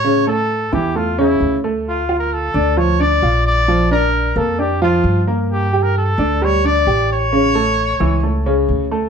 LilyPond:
<<
  \new Staff \with { instrumentName = "Trumpet" } { \time 4/4 \key a \phrygian \tempo 4 = 132 cis''8 a'4 g'8 f'8 e'4 r8 | \tuplet 3/2 { f'4 bes'8 } a'4 cis''8 d''4 d''8~ | d''8 bes'4 a'8 g'8 f'4 r8 | \tuplet 3/2 { g'4 bes'8 } a'4 cis''8 d''4 cis''8~ |
cis''2. r4 | }
  \new Staff \with { instrumentName = "Grand piano" } { \time 4/4 \key a \phrygian <cis cis'>8 <a a'>4 <e e'>8 <a a'>8 <cis cis'>4 <a a'>8~ | <a a'>8 <f' f''>4 <d' d''>8 <f f'>8 <d' d''>8 <f' f''>4 | <f f'>8 <d' d''>4 <bes bes'>8 <d' d''>8 <f f'>4 <bes bes'>8~ | <bes bes'>8 <g' g''>4 <d' d''>8 <g g'>8 <d' d''>8 <g' g''>4 |
<cis cis'>8 <a a'>4 <e e'>8 <a a'>8 <cis cis'>4 <a a'>8 | }
  \new Staff \with { instrumentName = "Upright bass" } { \clef bass \time 4/4 \key a \phrygian a,4. e,4. d,4~ | d,4. d,4. bes,,4~ | bes,,4. f,4. g,4~ | g,4. d,4. a,,4~ |
a,,4. cis,4. d,4 | }
>>